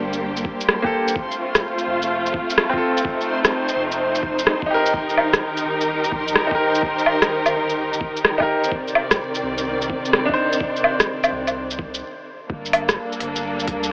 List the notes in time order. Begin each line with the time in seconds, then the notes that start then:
Already playing: G1 G3 A#3 D4 G4 A4 C5
0.13 shaker
0.37 shaker
0.45 kick
0.61 shaker
0.69 cross-stick
0.82 A#3 G4 A4, kick
1.08 shaker
1.15 A3 C4 F4, kick
1.31 shaker
1.55 kick, cross-stick, shaker
1.78 shaker
1.87 F1
2.02 shaker
2.26 shaker
2.34 kick
2.50 shaker
2.58 cross-stick
2.69 C4 F4, kick
2.78 A4
2.97 shaker
3.05 D#4, kick
3.21 shaker
3.45 cross-stick, shaker
3.68 shaker
3.76 F1
3.92 shaker
4.15 shaker
4.23 F1, kick
4.39 shaker
4.47 cross-stick
4.62 kick
4.66 D#4
4.70 G4 A#4
4.86 shaker
4.93 D#1 D#3 G4 A#4, kick
5.10 shaker
5.17 low woodblock
5.33 kick, cross-stick, shaker
5.57 shaker
5.65 D#1
5.81 shaker
6.04 shaker
6.12 A#1, kick
6.28 shaker
6.36 D#1, cross-stick
6.47 D#4
6.51 G4 A#4, kick
6.75 shaker
6.83 kick
6.99 shaker
7.06 low woodblock
7.22 cross-stick, shaker
7.46 low woodblock, shaker
7.54 D#1
7.70 shaker
7.93 shaker
8.01 kick
8.17 shaker
8.25 cross-stick
8.38 D#4 G4 A#4, kick, low woodblock
8.64 shaker
8.71 C3 D#3 C4 D5, kick
8.88 shaker
8.95 low woodblock
9.11 kick, cross-stick, shaker
9.35 shaker
9.43 C2
9.58 shaker
9.82 shaker
9.90 kick
10.05 shaker
10.13 cross-stick
10.26 D4 D#4, kick
10.34 C5
10.53 shaker
10.61 kick
10.76 shaker
10.84 low woodblock
11.00 kick, cross-stick, shaker
11.24 low woodblock, shaker
11.32 C2
11.47 low woodblock, shaker
11.71 shaker
11.79 C2, kick
11.94 shaker
12.49 G1 G3 A#3 D4 A4, kick
12.65 shaker
12.73 open hi-hat, low woodblock
12.89 kick, cross-stick, shaker
13.12 shaker
13.20 G1, open hi-hat
13.36 shaker
13.60 shaker
13.68 D2, kick, open hi-hat
13.83 shaker